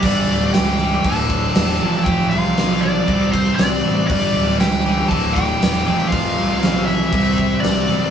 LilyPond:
<<
  \new Staff \with { instrumentName = "Lead electric guitar" } { \time 4/4 \key g \dorian \tempo 4 = 118 d''4 g''4 a''2 | g''8 f''4 d''4 c''8 d''4 | d''4 g''4 a''8 g''4. | f''4 f''8 e''4. d''4 | }
  \new Staff \with { instrumentName = "Lead electric guitar" } { \time 4/4 \key g \dorian d'4 g'4 a'2 | g'8 f'4 d'4 c'8 d'4 | d'4 g'4 a'8 g'4. | f'4 f'8 e'4. d'4 | }
  \new Staff \with { instrumentName = "Distorted electric guitar" } { \clef bass \time 4/4 \key g \dorian <g, d g>4. <g, d g>8 <d, a, d>4. <f, c f>8~ | <f, c f>4 <f, c f>4 <c g c'>4. <c g c'>8 | <g, d g>4. <g, d g>8 <d, a, d>4. <f, c f>8~ | <f, c f>4 <f, c f>4 <c g c'>4. <c g c'>8 | }
  \new Staff \with { instrumentName = "Distorted electric guitar" } { \clef bass \time 4/4 \key g \dorian <g, d g>2 <d, a, d>4. <f, c f>8~ | <f, c f>2 <c g c'>2 | <g, d g>2 <d, a, d>4. <f, c f>8~ | <f, c f>2 <c g c'>2 | }
  \new Staff \with { instrumentName = "Fingered electric bass" } { \clef bass \time 4/4 \key g \dorian g,,8 d,,8 cis,4 d,,4 e,,8 f,,8 | f,,8 c,8 b,,4 c,4 c,8 a,,8 | g,,8 d,,8 cis,4 d,,4 e,,8 f,,8 | f,,8 c,8 b,,4 c,4 c,8 fis,,8 | }
  \new DrumStaff \with { instrumentName = "Drums" } \drummode { \time 4/4 <cymc bd>8 cymc8 <cymc sn>8 cymc8 <cymc bd>8 <cymc bd>8 <cymc sn>8 cymc8 | <cymc bd>8 cymc8 <cymc sn>8 cymc8 <cymc bd>8 <cymc bd>8 <cymc sn>8 cymc8 | <cymc bd>8 cymc8 <cymc sn>8 cymc8 <cymc bd>8 <cymc bd>8 <cymc sn>8 cymc8 | <cymc bd>8 cymc8 <cymc sn>8 cymc8 <cymc bd>8 <cymc bd>8 <cymc sn>8 cymc8 | }
>>